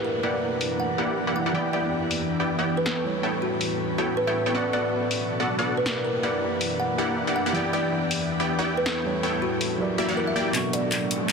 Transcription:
Already playing: F#2 E3 A#3 D4 E4 G4 A#4 D5 F#5
0.05 A#4
0.23 A#3 E4 G4 D5 F#5
0.61 open hi-hat
0.80 F#5
0.98 A#3 E4 G4 D5 F#5
1.27 A#3 E4 G4 D5 F#5
1.36 F#5
1.46 A#3 E4 G4 D5 F#5
1.53 E2 E3 B3 D4 E4 G4 D5 G5
1.57 D5
1.73 B3 E4 G4 D5 G5
2.11 open hi-hat
2.40 B3 E4 G4 D5 G5
2.59 B3 E4 G4 D5 G5
2.77 B4
2.86 B3 E4 A4 C#5 G5, snare
3.03 A2 G3 A3 B3 C#4 E4 B4 C#5
3.23 B3 E4 A4 C#5 G5
3.42 F#4
3.61 open hi-hat
3.98 B3 E4 F#4 A4 C#5 G5
4.17 B4
4.27 B3 E4 A4 C#5 E5 G5
4.46 B3 E4 A4 C#5 G5
4.53 B2 F#3 A3 B3 D4 F#4 A4 D5 F#5 C#6
4.57 D5
4.73 B3 F#4 A4 D5 F#5
5.11 open hi-hat
5.40 B3 F#4 A4 D5 F#5
5.59 B3 F#4 A4 D5 F#5
5.77 B4
5.85 F#2 E3 A#3 E4 G4 A#4 D5 F#5, snare
6.05 A#4
6.23 A#3 E4 G4 D5 F#5
6.61 open hi-hat
6.80 F#5
6.98 A#3 E4 G4 D5 F#5
7.27 A#3 E4 G4 D5 F#5
7.36 F#5
7.46 A#3 E4 G4 D5 F#5
7.53 E2 E3 B3 E4 G4 D5 G5
7.57 D5
7.73 B3 E4 G4 D5 G5
8.11 open hi-hat
8.40 B3 E4 G4 D5 G5
8.59 B3 E4 G4 D5 G5
8.77 B4
8.86 B3 E4 A4 C#5 G5, snare
9.03 G3 A3 E4 B4
9.07 C#5
9.23 B3 E4 A4 C#5 G5
9.42 F#4
9.61 open hi-hat
9.78 F#3 E4 G4 A#4 D5
9.98 A#3 E4 F#4 G4 D5 E5
10.09 A#3 E4 G4 D5 F#5
10.17 A#4
10.27 E5
10.36 A#3 E4 G4 D5 G5
10.53 B2 F#3 A3 B3 D4 F#4 A4 D5, clap, closed hi-hat, riser
10.57 C#6
10.73 B3 F#4 A4 D5 F#5, closed hi-hat
10.92 clap, closed hi-hat
11.11 closed hi-hat

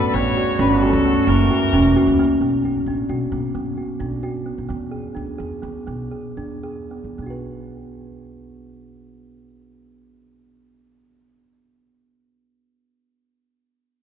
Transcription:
Already playing: D3 B3 A4 B4
0.13 A1 C#3 G3 B3 F#4 C#5
0.37 F#4
0.59 G1 C#4 B4
0.82 F#4 A4
0.93 C#2
1.05 A3
1.27 F#1 E3 A#3 A#4
1.51 F#4
1.73 E1 C#4
1.96 F#4
2.07 C#2
2.19 A#3
2.41 B1 B3
2.65 F#4
2.86 A1 D4
3.09 B1 F#4
3.32 B1 B3
3.54 F#2 B3
3.77 F#4
4.00 B1 D4
4.23 F#4
4.46 B3
4.58 B1
4.69 E2 B3
4.91 G#4
5.15 D2 D4
5.38 E2 G#4
5.62 E2 B3
5.87 B1 B3
6.11 G#4
6.37 E2 D4
6.63 G#4
6.91 B3
7.04 E3
7.18 B1 B3
7.22 D4 F#4
7.30 B4

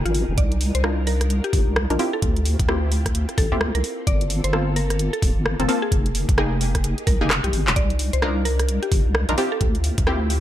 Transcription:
Already playing: D#4 G4 G#4 A#4
0.05 G#1 F4, closed hi-hat
0.15 open hi-hat
0.29 F1
0.38 C2 D4 F4 A#4 D5, kick, closed hi-hat
0.52 closed hi-hat
0.61 open hi-hat
0.75 C2 C5, closed hi-hat
0.84 D4 D#4 F4 A#4, cross-stick
1.07 A#4, open hi-hat
1.21 cross-stick, closed hi-hat
1.30 closed hi-hat
1.44 G4, closed hi-hat
1.53 G1, kick, open hi-hat
1.67 C2
1.76 cross-stick
1.90 A#1 D4 D#4 F4 A#4, closed hi-hat
1.99 C4 E4 F4 G4, open hi-hat
2.13 A4
2.22 D2, kick, closed hi-hat
2.36 closed hi-hat
2.45 open hi-hat
2.59 D2, kick, closed hi-hat
2.68 C4 E4 F4 G4, cross-stick
2.92 open hi-hat
3.06 kick, cross-stick, closed hi-hat
3.15 closed hi-hat
3.29 cross-stick, closed hi-hat
3.38 A1 A4, kick, open hi-hat
3.52 D2 C4 E4 F4 G4
3.61 cross-stick
3.75 C2 A#4, closed hi-hat
3.84 A#3 F4 A4, open hi-hat
4.07 G1 D5, kick, closed hi-hat
4.21 closed hi-hat
4.30 open hi-hat
4.44 G1 C5, closed hi-hat
4.53 A#3 C4 F4 A4, cross-stick
4.76 A#4, open hi-hat
4.90 cross-stick, closed hi-hat
4.99 closed hi-hat
5.13 A4, closed hi-hat
5.22 D1, kick, open hi-hat
5.36 G1
5.46 cross-stick
5.59 F1 A#3 C4 F4 A4, closed hi-hat
5.68 A#3 C4 F4 A4, open hi-hat
5.82 G#4
5.92 F1 D#4 G4 G#4, kick, closed hi-hat
6.06 closed hi-hat
6.15 open hi-hat
6.29 F1, kick, closed hi-hat
6.38 A#3 D#4 G4 G#4, cross-stick
6.61 open hi-hat
6.75 kick, cross-stick, closed hi-hat
6.84 closed hi-hat
6.98 closed hi-hat
7.07 C2 A#4, kick, open hi-hat
7.21 F1 A#3 D#4 G4 G#4
7.30 cross-stick, clap
7.44 C2 G4, closed hi-hat
7.53 G#1, open hi-hat
7.67 D#1, clap
7.76 C2 D4 F4 A#4 D5, kick, closed hi-hat
7.90 closed hi-hat
7.99 open hi-hat
8.13 C2 C5, closed hi-hat
8.22 D4 D#4 F4 A#4, cross-stick
8.45 A#4, open hi-hat
8.59 cross-stick, closed hi-hat
8.69 closed hi-hat
8.83 G4, closed hi-hat
8.92 G1, kick, open hi-hat
9.06 C2
9.15 cross-stick
9.29 A#1 D4 D#4 F4 A#4, closed hi-hat
9.38 C4 E4 F4 G4, open hi-hat
9.52 A4
9.61 D2, kick, closed hi-hat
9.75 closed hi-hat
9.84 open hi-hat
9.98 D2, kick, closed hi-hat
10.07 C4 E4 F4 G4, cross-stick
10.30 open hi-hat

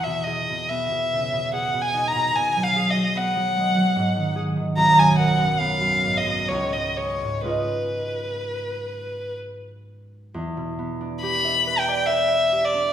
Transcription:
Already playing: E2 E4 G#4
0.03 B2 E5
0.24 G#4 D#5
0.50 B2
0.68 B3 E5
0.91 B2
1.14 C#3
1.33 B2
1.53 G#4 F#5
1.74 B2
1.81 G#5
1.94 D#4
2.08 A#5
2.15 B2
2.35 B2 G#5
2.56 F#3
2.63 F5
2.76 G#4
2.90 D#5
2.96 F#3
3.15 B3 F#5
3.36 F#3
3.56 G#3
3.76 F#3
3.96 G#2
4.17 D#3
4.36 G#4
4.57 D#3
4.77 B1 A#5
4.97 F#2 G#5
5.18 A#4 F#5
5.38 F#2
5.60 B3 F5
5.81 F#2
6.03 G#2
6.17 D#5
6.26 F#2
6.48 C#2 C#5
6.73 G#2 D#5
6.97 G#4 C#5
7.22 G#2
7.43 G#2 G#3 F4 G#4 B4
7.47 D#5
10.34 E2
10.57 B2
10.79 B3
11.01 D4
11.22 G4 B5
11.45 E5
11.67 B4
11.79 G5
11.88 D5
12.06 B4 E5
12.31 E5
12.52 G4
12.65 D5
12.74 D4

